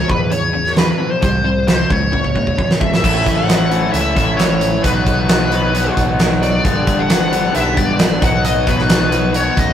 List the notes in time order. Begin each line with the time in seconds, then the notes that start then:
Already playing: C#5
0.09 E2 B2 B4, kick
0.31 E2 C#3 C#5, closed hi-hat
0.53 E2 C#3
0.66 snare
0.77 E2 D3 B4, snare, closed hi-hat
1.00 E2 B2
1.11 C5
1.21 C2 C3 G3, kick, closed hi-hat
1.44 C3 G3
1.68 C3 G3 C5, snare, closed hi-hat
1.90 C#2 C#3 G#3 C#5, kick
2.13 C#2 C#3 A#3, kick
2.24 kick
2.35 E1 C#3 A#3, kick
2.47 kick
2.58 F#1 C#3 B3, kick
2.71 snare
2.80 G#1 C#3 G#3 E5, kick
2.94 snare
3.02 A1 A2 E3 A3 C#4 E4, kick, crash
3.24 A1 A3 C#4 E4, kick, closed hi-hat
3.36 F#5
3.47 E3 A3 C#4 E4, snare, closed hi-hat
3.70 A2 E3 A3 C#4 E4, closed hi-hat
3.92 C#2 E3 A3 C#4 E4 E5, closed hi-hat
4.15 A1 A2 E3 A3 C#4 E4, kick, closed hi-hat
4.37 E3 A3 C#4 E4 C#5, snare, closed hi-hat
4.60 A3 C#4 E4, closed hi-hat
4.83 B1 B2 D#3 F#3 B3 D#4 F#4 B4, kick, closed hi-hat
5.05 B1 F#3 B3 D#4, kick, closed hi-hat
5.29 D#3 F#3 B3 D#4 B4, snare, closed hi-hat
5.50 B2 D#3 F#3 B3 D#4 F#4, closed hi-hat
5.73 D#3 F#3 B3 D#4, closed hi-hat
5.96 B1 B2 D#3 F#3 B3 D#4, kick, closed hi-hat
6.19 D#3 F#3 B3 D#4, snare, closed hi-hat
6.41 F#3 B3 D#4 D5, closed hi-hat
6.63 G1 G2 D3 G3 B3 D4 G4, kick, closed hi-hat
6.86 G1 G3 B3 D4, kick, closed hi-hat
6.99 F#5
7.08 D3 G3 B3 D4, snare, closed hi-hat
7.30 G2 D3 G3 B3 D4 G4, closed hi-hat
7.53 B1 D3 G3 B3 D4 E5, closed hi-hat
7.76 G1 G2 D3 G3 B3 D4 D5, kick, closed hi-hat
7.98 D3 G3 B3 D4, snare, closed hi-hat
8.21 B1 B2 F#3 B3 D#4 F#4 F#5, kick, closed hi-hat
8.45 B2 F#3 B3 D#4 D#5, closed hi-hat
8.66 B1 F#3 B3 D#4 B4, kick, closed hi-hat
8.79 snare
8.89 B2 F#3 B3 D#4 F#4, snare, closed hi-hat
9.12 B2 F#3 B3 D#4, closed hi-hat
9.34 B2 F#3 B3 D#4 C#5, closed hi-hat
9.56 C#2 B2 F#3 B3 D#4 D#5, kick, closed hi-hat